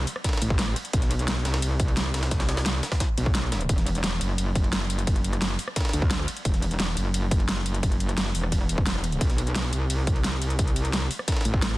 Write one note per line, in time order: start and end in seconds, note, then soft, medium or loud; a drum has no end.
0.07 open hi-hat medium
0.07 ride medium
0.16 cross-stick medium
0.24 kick medium
0.24 snare medium
0.24 closed hi-hat loud
0.24 ride medium
0.29 snare medium
0.29 ride medium
0.33 snare medium
0.33 ride medium
0.37 snare medium
0.37 ride medium
0.42 0.75 A1 medium
0.42 closed hi-hat medium
0.42 ride medium
0.50 kick loud
0.59 snare loud
0.59 closed hi-hat medium
0.59 ride medium
0.68 cross-stick soft
0.76 closed hi-hat medium
0.76 ride medium
0.85 closed hi-hat soft
0.93 1.44 B1 loud
0.93 kick loud
0.93 closed hi-hat loud
0.93 ride medium
1.02 snare soft
1.02 closed hi-hat soft
1.11 closed hi-hat medium
1.11 ride medium
1.19 closed hi-hat soft
1.28 snare loud
1.28 closed hi-hat medium
1.28 ride medium
1.37 snare soft
1.45 2.82 C2 loud
1.45 snare loud
1.45 closed hi-hat medium
1.45 ride medium
1.54 snare loud
1.54 ride medium
1.62 closed hi-hat medium
1.62 ride medium
1.80 kick loud
1.80 closed hi-hat medium
1.80 ride medium
1.88 ride soft
1.97 snare loud
1.97 closed hi-hat medium
1.97 ride medium
2.14 snare loud
2.14 closed hi-hat medium
2.14 ride medium
2.23 snare loud
2.23 closed hi-hat soft
2.23 ride medium
2.31 kick loud
2.31 snare loud
2.31 closed hi-hat loud
2.31 ride medium
2.40 snare loud
2.40 snare soft
2.40 closed hi-hat soft
2.40 ride medium
2.49 snare loud
2.49 closed hi-hat medium
2.49 ride medium
2.57 cross-stick soft
2.57 snare loud
2.57 closed hi-hat soft
2.57 ride medium
2.66 snare loud
2.66 closed hi-hat loud
2.66 ride medium
2.74 snare soft
2.83 snare loud
2.83 open hi-hat medium
2.83 ride medium
2.92 kick medium
2.92 cross-stick medium
2.92 snare loud
2.92 ride medium
3.00 kick medium
3.00 snare loud
3.00 closed hi-hat loud
3.00 ride medium
3.18 3.68 B1 medium
3.18 closed hi-hat medium
3.18 ride medium
3.26 kick loud
3.35 snare loud
3.35 closed hi-hat medium
3.35 ride medium
3.43 cross-stick soft
3.52 snare loud
3.52 closed hi-hat medium
3.52 ride medium
3.61 closed hi-hat soft
3.69 4.20 E1 loud
3.69 kick loud
3.69 closed hi-hat loud
3.69 ride medium
3.78 snare soft
3.78 closed hi-hat soft
3.86 closed hi-hat medium
3.86 ride medium
3.95 closed hi-hat soft
4.04 snare loud
4.04 closed hi-hat loud
4.04 ride medium
4.12 snare soft
4.21 5.58 F#1 loud
4.21 closed hi-hat medium
4.21 ride medium
4.38 closed hi-hat loud
4.38 ride medium
4.55 kick loud
4.55 closed hi-hat medium
4.55 ride medium
4.64 ride soft
4.73 snare loud
4.73 closed hi-hat medium
4.73 ride loud
4.90 closed hi-hat medium
4.90 ride medium
4.99 closed hi-hat soft
5.07 kick loud
5.07 closed hi-hat loud
5.07 ride medium
5.16 closed hi-hat soft
5.24 closed hi-hat medium
5.24 ride medium
5.33 cross-stick soft
5.33 closed hi-hat soft
5.42 snare loud
5.42 closed hi-hat loud
5.42 ride medium
5.50 snare medium
5.59 open hi-hat medium
5.59 ride medium
5.68 cross-stick medium
5.76 kick medium
5.76 snare medium
5.76 closed hi-hat loud
5.76 ride medium
5.80 snare medium
5.80 ride medium
5.85 snare medium
5.85 ride medium
5.89 snare medium
5.89 ride medium
5.93 6.26 D2 medium
5.93 closed hi-hat medium
5.93 ride medium
6.02 kick loud
6.11 snare loud
6.11 closed hi-hat medium
6.11 ride medium
6.19 cross-stick medium
6.28 closed hi-hat medium
6.28 ride medium
6.37 closed hi-hat soft
6.45 6.95 E1 loud
6.45 kick loud
6.45 closed hi-hat medium
6.45 ride medium
6.54 snare soft
6.54 closed hi-hat soft
6.62 closed hi-hat medium
6.62 ride medium
6.71 closed hi-hat soft
6.80 snare loud
6.80 closed hi-hat medium
6.80 ride medium
6.88 snare soft
6.97 8.33 F#1 loud
6.97 closed hi-hat medium
6.97 ride medium
7.14 closed hi-hat medium
7.14 ride medium
7.31 kick loud
7.31 closed hi-hat medium
7.31 ride medium
7.40 ride soft
7.49 snare loud
7.49 closed hi-hat medium
7.49 ride medium
7.66 closed hi-hat medium
7.66 ride medium
7.74 closed hi-hat soft
7.83 kick loud
7.83 closed hi-hat loud
7.83 ride medium
7.92 closed hi-hat soft
8.00 closed hi-hat medium
8.00 ride medium
8.09 cross-stick soft
8.09 closed hi-hat soft
8.18 snare loud
8.18 closed hi-hat medium
8.18 ride medium
8.26 snare medium
8.35 8.85 E1 loud
8.35 open hi-hat medium
8.35 ride medium
8.43 cross-stick medium
8.52 kick medium
8.52 closed hi-hat medium
8.52 ride medium
8.69 closed hi-hat medium
8.69 ride medium
8.78 kick loud
8.86 9.20 E1 loud
8.86 snare loud
8.86 closed hi-hat medium
8.86 ride medium
8.95 cross-stick soft
9.04 closed hi-hat medium
9.04 ride medium
9.12 closed hi-hat soft
9.21 9.71 B1 loud
9.21 kick loud
9.21 closed hi-hat medium
9.21 ride medium
9.30 snare soft
9.30 closed hi-hat soft
9.38 closed hi-hat medium
9.38 ride medium
9.47 closed hi-hat soft
9.55 snare loud
9.55 closed hi-hat medium
9.55 ride medium
9.64 snare soft
9.73 11.09 C2 loud
9.73 closed hi-hat medium
9.73 ride medium
9.90 closed hi-hat medium
9.90 ride loud
10.07 kick loud
10.07 closed hi-hat medium
10.07 ride medium
10.16 ride soft
10.24 snare loud
10.24 closed hi-hat medium
10.24 ride loud
10.42 closed hi-hat medium
10.42 ride medium
10.50 closed hi-hat soft
10.59 kick loud
10.59 closed hi-hat loud
10.59 ride medium
10.68 closed hi-hat soft
10.76 closed hi-hat medium
10.76 ride medium
10.85 cross-stick soft
10.85 closed hi-hat soft
10.93 snare loud
10.93 closed hi-hat medium
10.93 ride medium
11.02 snare medium
11.11 open hi-hat medium
11.11 ride medium
11.19 cross-stick medium
11.28 kick medium
11.28 snare loud
11.28 closed hi-hat loud
11.28 ride medium
11.32 snare loud
11.32 ride medium
11.36 snare medium
11.36 ride medium
11.41 snare medium
11.41 ride medium
11.45 11.78 A1 loud
11.45 closed hi-hat medium
11.45 ride medium
11.54 kick loud
11.62 snare loud
11.62 closed hi-hat medium
11.62 ride medium
11.71 cross-stick soft